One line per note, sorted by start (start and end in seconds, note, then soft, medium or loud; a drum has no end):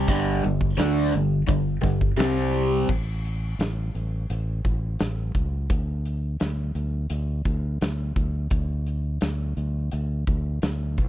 0.08 0.41 G1 medium
0.08 0.42 G2 medium
0.08 0.43 D3 loud
0.08 0.43 G3 loud
0.08 kick loud
0.08 closed hi-hat medium
0.43 0.77 G1 medium
0.43 0.71 G2 medium
0.43 0.72 D3 medium
0.43 closed hi-hat medium
0.61 kick medium
0.77 1.11 D2 loud
0.77 1.11 D3 medium
0.77 1.12 A3 loud
0.77 1.12 D4 loud
0.77 snare loud
0.77 closed hi-hat medium
1.12 1.46 G1 medium
1.12 1.40 G2 medium
1.12 1.41 D3 medium
1.12 closed hi-hat medium
1.47 1.81 G1 medium
1.47 1.76 G2 medium
1.47 1.76 D3 medium
1.47 kick loud
1.47 closed hi-hat medium
1.81 2.16 G1 medium
1.81 2.10 G2 medium
1.81 2.10 D3 medium
1.81 kick medium
1.81 snare soft
1.81 closed hi-hat medium
2.01 kick medium
2.17 2.84 C2 medium
2.17 2.87 C3 medium
2.17 2.87 G3 medium
2.17 2.87 C4 medium
2.17 snare loud
2.17 closed hi-hat medium
2.54 closed hi-hat medium
2.89 3.55 A1 medium
2.89 kick loud
2.89 crash medium
3.25 closed hi-hat medium
3.59 3.91 A1 medium
3.59 snare medium
3.59 closed hi-hat medium
3.95 4.26 A1 medium
3.95 closed hi-hat medium
4.30 4.62 A1 medium
4.30 closed hi-hat medium
4.65 4.97 A1 medium
4.65 kick medium
4.65 closed hi-hat medium
4.99 5.32 A1 medium
4.99 snare loud
4.99 closed hi-hat medium
5.35 5.67 C#2 medium
5.35 kick medium
5.35 closed hi-hat medium
5.70 6.36 D2 medium
5.70 kick medium
5.70 closed hi-hat medium
6.05 closed hi-hat medium
6.40 6.73 D2 medium
6.40 snare medium
6.40 closed hi-hat medium
6.75 7.07 D2 medium
6.75 closed hi-hat medium
7.10 7.43 D2 medium
7.10 closed hi-hat medium
7.45 7.78 D2 medium
7.45 kick medium
7.45 closed hi-hat medium
7.81 8.14 D2 medium
7.81 snare loud
7.81 closed hi-hat medium
8.16 8.48 D2 medium
8.16 kick medium
8.16 closed hi-hat medium
8.50 9.18 D2 medium
8.50 kick medium
8.50 closed hi-hat medium
8.87 closed hi-hat medium
9.21 9.54 D2 medium
9.21 snare medium
9.21 closed hi-hat medium
9.57 9.89 D2 medium
9.57 closed hi-hat soft
9.91 10.25 D2 medium
9.91 closed hi-hat medium
10.27 10.60 D2 medium
10.27 kick medium
10.27 closed hi-hat medium
10.62 10.99 D2 medium
10.62 snare medium
10.62 closed hi-hat medium
10.98 11.09 C2 medium
10.98 kick medium
10.98 closed hi-hat medium